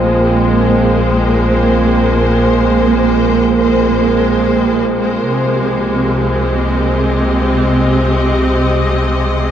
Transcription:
Already playing: A#1 A#2 F3 G#3 A#3 C4 F4 C5 D#5
5.23 C2 C3
5.43 G4
5.93 C4
6.30 D#5

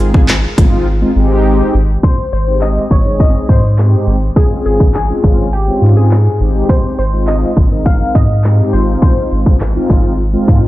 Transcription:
Already playing: G#3 C4 D#4 F4 G#4
0.00 G#1
0.14 kick
0.29 clap, closed hi-hat
0.58 G#1 G#3 C4 D#4 F4, kick, closed hi-hat
1.01 G#3 C4 D#4 F4
1.16 G#1 G#3 C4 D#4 G4
1.74 G#1
2.03 C5, kick, closed hi-hat
2.32 G#1 C5, closed hi-hat
2.47 G#3 C4 D#4 G4
2.61 D#5, clap, closed hi-hat
2.91 G#1 C#5, kick, closed hi-hat
3.05 G#3 C4 D#4 G#4
3.20 D#5, kick, closed hi-hat
3.49 G#2 C5, kick, closed hi-hat
3.63 closed hi-hat
3.78 G#3 C4 D#4 G4, clap, closed hi-hat
4.07 G#1, closed hi-hat
4.36 G#3 C4 C#4 F4 G#4, kick, closed hi-hat
4.65 G#1 G#4, closed hi-hat
4.80 kick
4.94 G#4, clap, closed hi-hat
5.09 G#3 C4 C#4 F4
5.24 G#1, kick, closed hi-hat
5.53 G4, closed hi-hat
5.67 G#3 C4 C#4 F4
5.82 G#2, closed hi-hat
5.96 G#4, closed hi-hat
6.11 clap, closed hi-hat
6.40 G#1 G#3 C4 D#4 G4, closed hi-hat
6.69 C5, kick, closed hi-hat
6.98 G#1 C5, closed hi-hat
7.13 G#3 C4 D#4 F4
7.27 D#5, clap, closed hi-hat
7.57 G#1, kick, closed hi-hat
7.71 G#3 C4 D#4 A#4
7.86 F5, kick, closed hi-hat
8.15 G#2 D#5, kick, closed hi-hat
8.29 closed hi-hat
8.44 G#3 C4 D#4 G4, clap, closed hi-hat
8.73 G#1 G#3 C4 D#4 F4 C5, closed hi-hat
9.02 C5, kick, closed hi-hat
9.31 G#1, closed hi-hat
9.46 kick
9.60 clap, closed hi-hat
9.75 G#3 C4 D#4 F4
9.90 G#1, kick, closed hi-hat
10.19 closed hi-hat
10.33 G#3 C4 D#4 F4
10.48 G#2, kick, closed hi-hat
10.63 closed hi-hat

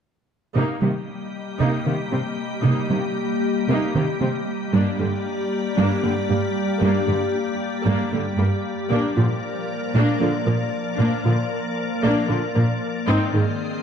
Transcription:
0.55 C3 G3 A#3 D#4 G4 D#5
0.81 C3 D#3 G3 A#3
1.60 C3 A#3 D#4
1.86 C3 D#3 A#3
2.11 C3 G3 A#3 C4
2.64 C3 A#3 D#4
2.90 C3 D#3 G3 A#3
3.68 C3 A#3 D#4
3.95 C3 D#3 A#3
4.21 C3 G3 A#3 C4
4.73 G2 G3 A#3 D4 G4 D5
4.99 G2 D3 G3 D4
5.77 G2 G3 A#3 D4
6.03 G2 D3 G3 A#3
6.30 G2 G3 A#3 G4
6.82 G2 G3 A#3 D4
7.08 G2 D3 G3 D4
7.86 G2 G3 A#3 D4
8.12 G2 D3 G3 A#3
8.38 G2 G3 A#3 G4
8.90 A#2 F3 A#3 D4 A#4 D5
9.16 A#2 D3 F3 F4
9.95 A#2 A#3 D4
10.21 A#2 D3 F3 D4
10.47 A#2 F3 A#3 A#4
10.99 A#2 A#3 D4
11.25 A#2 D3 F3 F4
12.03 A#2 A#3 D4
12.29 A#2 D3 F3 D4
12.55 A#2 F3 A#3 A#4
13.07 G#2 D#3 G#3 C4 D#4 G#4 D#5
13.34 G#2 D#3 G#3 D#4

